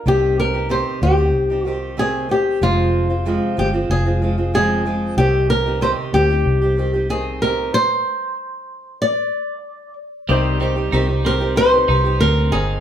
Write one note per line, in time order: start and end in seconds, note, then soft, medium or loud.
0.06 0.82 C2 medium
0.06 0.54 C3 medium
0.06 0.54 D#3 medium
0.06 0.54 C4 medium
0.06 0.53 D#4 medium
0.06 0.52 G4 medium
0.06 0.39 G4 medium
0.40 0.71 A#4 medium
0.53 0.69 C4 soft
0.53 0.69 D#4 soft
0.53 0.69 G4 soft
0.69 1.01 C3 medium
0.69 1.00 D#3 medium
0.69 1.01 C4 medium
0.69 1.02 D#4 medium
0.69 1.02 G4 medium
0.69 1.00 C5 medium
1.02 1.34 D2 medium
1.02 1.18 D#3 soft
1.02 1.18 C4 soft
1.02 1.17 D#4 medium
1.02 1.68 G4 medium
1.02 1.16 G4 medium
1.17 1.51 C4 soft
1.17 1.50 D#4 soft
1.17 1.49 G4 soft
1.34 2.58 C2 loud
1.50 1.65 C4 soft
1.50 1.66 D#4 soft
1.50 1.66 G4 soft
1.65 1.97 D#3 soft
1.65 1.97 C4 soft
1.65 1.97 D#4 soft
1.65 1.94 F4 medium
1.65 1.99 G4 medium
1.97 2.29 C3 medium
1.97 2.28 D#3 medium
1.97 2.29 C4 medium
1.97 2.30 D#4 medium
1.97 2.31 G#4 medium
2.29 2.61 D#3 soft
2.29 2.62 C4 soft
2.29 2.62 D#4 medium
2.29 2.62 G4 medium
2.29 2.63 G4 medium
2.61 3.37 F1 medium
2.61 3.09 F2 medium
2.61 3.10 C3 medium
2.61 3.10 F3 medium
2.61 3.10 G#3 medium
2.61 3.09 C4 medium
2.61 3.08 F4 medium
2.61 3.61 F4 medium
3.09 3.25 F3 soft
3.09 3.25 G#3 soft
3.09 3.26 C4 soft
3.09 3.25 F4 soft
3.25 3.57 F2 medium
3.25 3.58 C3 medium
3.25 3.56 F3 medium
3.25 3.57 G#3 medium
3.25 3.57 C4 medium
3.25 3.58 F4 medium
3.57 3.87 G1 medium
3.57 3.73 F3 medium
3.57 3.73 G#3 medium
3.57 3.73 C4 medium
3.57 3.72 F4 medium
3.57 3.67 G4 medium
3.73 4.06 F3 soft
3.73 4.06 G#3 soft
3.73 4.05 C4 soft
3.73 4.05 F4 soft
3.90 5.13 F1 medium
3.90 4.50 G#4 medium
4.06 4.20 F3 soft
4.06 4.21 G#3 soft
4.06 4.22 C4 soft
4.06 4.22 F4 soft
4.22 4.37 F3 soft
4.22 4.38 G#3 medium
4.22 4.37 C4 soft
4.22 4.36 F4 medium
4.37 4.53 F3 soft
4.37 4.53 G#3 soft
4.37 4.54 C4 soft
4.37 4.53 F4 soft
4.54 4.86 F2 medium
4.54 4.86 C3 medium
4.54 4.84 F3 medium
4.54 4.85 G#3 medium
4.54 4.86 C4 medium
4.54 4.86 F4 medium
4.54 5.17 G#4 medium
4.85 5.17 F3 medium
4.85 5.18 G#3 medium
4.85 5.17 C4 medium
4.85 5.18 F4 medium
5.17 5.93 C2 medium
5.17 5.66 C3 medium
5.17 5.66 D#3 medium
5.17 5.66 C4 medium
5.17 5.66 D#4 medium
5.17 5.50 G4 medium
5.17 5.65 G4 medium
5.50 5.82 A#4 medium
5.66 5.81 C4 soft
5.66 5.81 D#4 soft
5.66 5.82 G4 soft
5.81 6.13 C3 medium
5.81 6.12 D#3 medium
5.81 6.13 C4 medium
5.81 6.14 D#4 medium
5.81 6.14 G4 medium
5.81 5.91 C5 medium
6.13 6.43 D2 medium
6.13 6.29 D#3 medium
6.13 6.30 C4 soft
6.13 6.30 D#4 medium
6.13 7.10 G4 medium
6.13 6.28 G4 medium
6.30 6.63 C4 soft
6.30 6.62 D#4 soft
6.30 6.60 G4 soft
6.46 7.69 C2 loud
6.62 6.77 C4 soft
6.62 6.78 D#4 soft
6.62 6.77 G4 soft
6.77 6.93 D#3 soft
6.77 6.94 C4 soft
6.77 6.94 D#4 soft
6.77 6.92 G4 medium
6.93 7.09 C4 soft
6.93 7.09 D#4 soft
6.93 7.09 G4 soft
7.09 7.41 C3 medium
7.09 7.41 D#3 medium
7.09 7.41 C4 medium
7.09 7.42 D#4 medium
7.09 7.39 G#4 medium
7.42 7.74 D#3 soft
7.42 7.74 C4 medium
7.42 7.74 D#4 medium
7.42 7.75 G4 medium
7.42 7.71 A#4 medium
7.74 9.01 C5 medium
9.02 9.93 D5 medium
10.29 10.89 C2 medium
10.29 10.61 C3 medium
10.29 10.59 D#3 medium
10.29 10.60 G3 medium
10.29 12.80 C4 medium
10.29 10.59 C4 medium
10.29 12.80 D#4 medium
10.29 10.60 D#4 medium
10.29 10.61 G4 medium
10.29 12.80 C5 medium
10.60 10.76 D#3 medium
10.60 11.57 G3 soft
10.60 10.77 C4 medium
10.60 10.76 D#4 medium
10.60 10.75 G4 medium
10.76 10.92 C4 soft
10.76 10.92 D#4 soft
10.76 10.92 G4 soft
10.92 11.85 C2 medium
10.92 11.09 C3 medium
10.92 11.09 D#3 medium
10.92 11.09 C4 medium
10.92 11.08 D#4 medium
10.92 11.07 G4 medium
11.08 11.24 C4 soft
11.08 11.24 D#4 soft
11.08 11.24 G4 soft
11.24 11.40 D#3 medium
11.24 11.41 C4 medium
11.24 11.40 D#4 medium
11.24 11.39 G4 medium
11.24 11.57 A#4 medium
11.40 11.55 C4 soft
11.40 11.56 D#4 soft
11.40 11.56 G4 medium
11.56 11.72 C3 medium
11.56 11.72 D#3 medium
11.56 11.73 C4 medium
11.56 11.73 D#4 medium
11.56 11.71 G4 medium
11.56 12.20 C5 loud
11.72 11.88 C4 soft
11.72 11.89 D#4 soft
11.72 11.88 G4 soft
11.88 12.18 C2 medium
11.88 12.05 D#3 soft
11.88 12.05 C4 medium
11.88 12.04 D#4 medium
11.88 12.03 G4 medium
12.04 12.52 C4 soft
12.04 12.52 D#4 soft
12.04 12.52 G4 medium
12.20 12.50 D2 medium
12.20 12.80 C4 soft
12.20 12.54 A#4 medium
12.52 12.80 G1 medium
12.52 12.80 D#3 soft
12.52 12.80 C4 medium
12.52 12.80 D#4 medium
12.52 12.80 G#4 medium